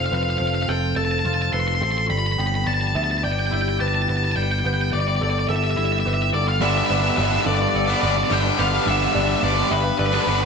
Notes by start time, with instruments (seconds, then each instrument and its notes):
Already playing: picked electric bass F1, clean electric guitar F3 C4 F4 A4, ambient pad F3 C4 F4 A4, felt piano C5
0.06 lead electric guitar F5
0.11 picked electric bass F1, clean electric guitar C4, felt piano B4, lead electric guitar F5
0.23 lead electric guitar F5
0.30 lead electric guitar F5
0.38 picked electric bass F1, clean electric guitar F3, lead electric guitar F5
0.47 lead electric guitar F5
0.55 lead electric guitar F5
0.63 lead electric guitar F5
0.68 picked electric bass F1, clean electric guitar C4, felt piano A4, lead electric guitar G5
0.96 picked electric bass F1, felt piano A4, clean electric guitar A4, lead electric guitar A5
1.05 lead electric guitar A5
1.11 lead electric guitar A5
1.19 lead electric guitar A5
1.25 picked electric bass F1, clean electric guitar F4, lead electric guitar A5
1.34 lead electric guitar A5
1.42 lead electric guitar A5
1.52 picked electric bass F1, clean electric guitar A4, felt piano B4, lead electric guitar C6
1.60 lead electric guitar C6
1.68 lead electric guitar C6
1.75 lead electric guitar C6
1.81 picked electric bass A1, clean electric guitar C4, felt piano A4, lead electric guitar C6
1.91 lead electric guitar C6
1.98 lead electric guitar C6
2.09 picked electric bass G1, clean electric guitar G3, ambient pad B3 E4 G4, lead electric guitar B5
2.18 lead electric guitar B5
2.26 lead electric guitar B5
2.32 lead electric guitar B5
2.38 picked electric bass G1, clean electric guitar B3, felt piano G5, lead electric guitar B5
2.47 lead electric guitar B5
2.55 lead electric guitar B5
2.66 picked electric bass G1, clean electric guitar G3, lead electric guitar A5
2.74 lead electric guitar A5
2.81 lead electric guitar A5
2.87 lead electric guitar A5
2.95 picked electric bass D2, clean electric guitar B3, felt piano E5, lead electric guitar A5
3.04 lead electric guitar A5
3.11 lead electric guitar A5
3.18 lead electric guitar A5
3.23 picked electric bass G1, clean electric guitar G4, felt piano D5, lead electric guitar G5
3.32 lead electric guitar G5
3.39 lead electric guitar G5
3.47 lead electric guitar G5
3.51 picked electric bass G1, clean electric guitar E4, lead electric guitar G5
3.62 lead electric guitar G5
3.69 lead electric guitar G5
3.79 picked electric bass G1, clean electric guitar G4, felt piano B4, lead electric guitar A5
3.88 lead electric guitar A5
3.95 lead electric guitar A5
4.02 lead electric guitar A5
4.08 picked electric bass G1, clean electric guitar B3, felt piano B4, lead electric guitar A5
4.17 lead electric guitar A5
4.24 lead electric guitar A5
4.32 lead electric guitar A5
4.36 picked electric bass G1, clean electric guitar G3, lead electric guitar G5
4.43 lead electric guitar G5
4.51 lead electric guitar G5
4.60 lead electric guitar G5
4.64 picked electric bass G1, clean electric guitar B3, felt piano B4, lead electric guitar G5
4.74 lead electric guitar G5
4.81 lead electric guitar G5
4.92 picked electric bass G1, clean electric guitar G3, lead electric guitar D5
5.00 lead electric guitar D5
5.08 lead electric guitar D5
5.16 lead electric guitar D5
5.20 picked electric bass G1, clean electric guitar B3, felt piano A4, lead electric guitar D5
5.30 lead electric guitar D5
5.39 lead electric guitar D5
5.49 picked electric bass G1, clean electric guitar G4, felt piano A4, lead electric guitar E5
5.56 lead electric guitar E5
5.64 lead electric guitar E5
5.71 lead electric guitar E5
5.77 picked electric bass G1, clean electric guitar E4, lead electric guitar E5
5.85 lead electric guitar E5
5.92 lead electric guitar E5
6.00 lead electric guitar E5
6.05 picked electric bass G1, clean electric guitar G4, felt piano B4, lead electric guitar E5
6.14 lead electric guitar E5
6.22 lead electric guitar E5
6.33 picked electric bass G1, clean electric guitar B3, felt piano A4, lead electric guitar D5
6.48 lead electric guitar F5
6.61 picked electric bass G1, distorted electric guitar G2 D3 G3 B3 D4, clean electric guitar G3, ambient pad G4 B4 D5 A5, felt piano D5, lead electric guitar E5
6.70 lead electric guitar E5
6.78 lead electric guitar E5
6.86 picked electric bass G1, distorted electric guitar D3, clean electric guitar B3, felt piano B4, lead electric guitar E5
6.90 distorted electric guitar G3 B3 D4
6.95 lead electric guitar E5
7.01 distorted electric guitar B3 D4, lead electric guitar E5
7.05 distorted electric guitar G3
7.09 lead electric guitar E5
7.17 picked electric bass G1, distorted electric guitar G2 D3 G3 B3 D4, clean electric guitar G3, lead electric guitar E5
7.25 lead electric guitar E5
7.31 overdriven electric guitar G3 B3 D4, lead electric guitar E5
7.41 lead electric guitar E5
7.46 picked electric bass G1, clean electric guitar B3, felt piano A4, lead electric guitar D5, muted overdriven electric guitar stroke
7.55 lead electric guitar D5
7.60 lead electric guitar D5, muted distorted electric guitar stroke
7.69 lead electric guitar D5
7.74 picked electric bass G1, clean electric guitar A4, lead electric guitar D5
7.86 distorted electric guitar G3 B3 D4, lead electric guitar D5
7.94 lead electric guitar D5
8.01 picked electric bass G1, distorted electric guitar D3 G3 B3 D4, clean electric guitar D4, lead electric guitar D5, felt piano D5
8.10 lead electric guitar D5
8.16 lead electric guitar D5, muted distorted electric guitar stroke
8.24 lead electric guitar D5
8.30 picked electric bass G1, distorted electric guitar G2 D3 G3 B3 D4, clean electric guitar G3, lead electric guitar G5
8.44 overdriven electric guitar G3 B3 D4
8.57 picked electric bass G1, distorted electric guitar D3 G3 B3 D4, clean electric guitar B3, felt piano B4, lead electric guitar F5
8.71 distorted electric guitar G3 B3 D4
8.85 picked electric bass G1, distorted electric guitar G2 D3 G3 B3 D4, clean electric guitar G3, lead electric guitar E5
8.97 lead electric guitar E5
9.04 lead electric guitar E5
9.13 picked electric bass G1, distorted electric guitar D3 G3 B3 D4, clean electric guitar B3, felt piano D5, lead electric guitar E5
9.20 lead electric guitar E5
9.27 distorted electric guitar G3 B3 D4, lead electric guitar E5
9.36 lead electric guitar E5
9.42 picked electric bass G1, distorted electric guitar G2 D3 G3 B3 D4, clean electric guitar G3, lead electric guitar D5
9.56 overdriven electric guitar G3 B3 D4
9.70 picked electric bass G1, clean electric guitar B3, lead electric guitar B4, felt piano E5, muted overdriven electric guitar stroke
9.84 muted distorted electric guitar stroke
9.99 picked electric bass G1, clean electric guitar A4, lead electric guitar B4, felt piano D5
10.06 lead electric guitar B4
10.12 distorted electric guitar G3 B3 D4, lead electric guitar B4
10.21 lead electric guitar B4
10.26 picked electric bass G1, distorted electric guitar D3 G3 B3 D4, clean electric guitar D4, felt piano B4, lead electric guitar B4
10.35 lead electric guitar B4
10.41 muted distorted electric guitar stroke